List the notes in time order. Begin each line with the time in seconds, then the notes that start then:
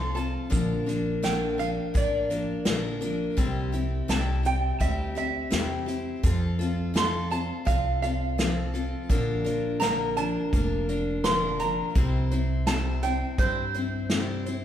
Already playing: C2 F3 C4 F4 A4 C6
0.15 C4 F4 A4 A5, closed hi-hat
0.50 A#1 A#2 D3 F3 A#3 D4 A#4, kick, closed hi-hat
0.86 F3 A#3 D4 A#4, closed hi-hat
1.23 A#2 D3 F3 A#3 D4 A#4 G5, snare, closed hi-hat
1.58 F3 A#3 D4 A#4 F5, closed hi-hat
1.94 A1 F3 A#3 D4 A#4 D5, kick, closed hi-hat
2.30 F3 A#3 D4 A#4, closed hi-hat
2.65 A#1 A#2 D3 F3 A#3 D4 A#4, snare, closed hi-hat
3.01 F3 A#3 D4 A#4, closed hi-hat
3.37 C2 C3 G3 C4 E4 G4, kick, closed hi-hat
3.72 C4 E4 G4, closed hi-hat
4.08 C2 C3 G3 C4 E4 G4 A5, snare, closed hi-hat
4.43 C4 E4 G4 G5, closed hi-hat
4.80 D2 G3 C4 E4 G4 E5, kick, closed hi-hat
5.15 C4 E4 G4 E5, closed hi-hat
5.50 E2 C3 G3 C4 E4 G4, snare, closed hi-hat
5.86 C4 E4 G4, closed hi-hat
6.23 F2 F3 C4 F4 A4, kick, closed hi-hat
6.59 C4 F4 A4, closed hi-hat
6.94 F3 C4 F4 A4 C6, snare, closed hi-hat
7.30 C4 F4 A4 A5, closed hi-hat
7.65 C2 F3 C4 F4 A4 F5, kick, closed hi-hat
8.02 C4 F4 A4 F5, closed hi-hat
8.38 F3 C4 F4 A4, snare, closed hi-hat
8.74 C4 F4 A4, closed hi-hat
9.09 A#1 A#2 D3 F3 A#3 D4 A#4, kick, closed hi-hat
9.44 F3 A#3 D4 A#4, closed hi-hat
9.80 A#2 D3 F3 A#3 D4 A#4 A#5, snare, closed hi-hat
10.17 F3 A#3 D4 A#4 A5, closed hi-hat
10.53 F1 F3 A#3 D4 A#4, kick, closed hi-hat
10.89 F3 A#3 D4 A#4, closed hi-hat
11.24 A#2 D3 F3 A#3 D4 A#4 C6, snare, closed hi-hat
11.59 F3 A#3 D4 A#4 A#5, closed hi-hat
11.95 C2 C3 G3 C4 E4 C5, kick, closed hi-hat
12.31 C4 E4 C5, closed hi-hat
12.67 C3 G3 C4 E4 C5 A5, snare, closed hi-hat
13.03 C4 E4 C5 G5, closed hi-hat
13.38 G2 G3 C4 E4 C5, kick, closed hi-hat
13.42 C5
13.74 C4 E4 C5, closed hi-hat
14.10 C3 G3 C4 E4 C5, snare, closed hi-hat
14.46 C4 E4 C5, closed hi-hat